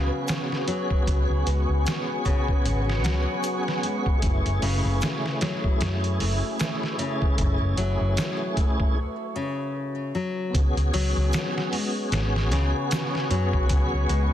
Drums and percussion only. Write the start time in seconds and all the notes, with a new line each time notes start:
0.28 snare, closed hi-hat, shaker
0.52 snare
0.68 closed hi-hat
0.90 kick
1.07 kick, closed hi-hat
1.47 closed hi-hat
1.86 snare, closed hi-hat, shaker
2.26 kick, closed hi-hat
2.48 kick
2.66 closed hi-hat
2.90 snare
3.05 snare, closed hi-hat
3.43 closed hi-hat, shaker
3.68 snare
3.83 closed hi-hat
4.06 kick
4.22 kick, closed hi-hat
4.46 closed hi-hat
4.62 open hi-hat
5.01 snare, closed hi-hat, shaker
5.26 snare
5.41 snare, closed hi-hat
5.64 kick
5.81 snare, closed hi-hat
6.04 closed hi-hat
6.20 open hi-hat
6.59 snare, closed hi-hat, shaker
6.83 snare
6.99 closed hi-hat
7.22 kick
7.38 kick, closed hi-hat
7.77 closed hi-hat
8.17 snare, closed hi-hat, shaker
8.57 kick, closed hi-hat
8.80 kick
10.54 kick, closed hi-hat
10.77 closed hi-hat
10.94 open hi-hat
11.33 snare, closed hi-hat, shaker
11.58 snare
11.73 open hi-hat
12.12 snare, closed hi-hat
12.36 snare
12.52 snare, closed hi-hat
12.91 snare, closed hi-hat, shaker
13.15 snare
13.31 closed hi-hat
13.53 kick
13.69 kick, closed hi-hat
14.09 closed hi-hat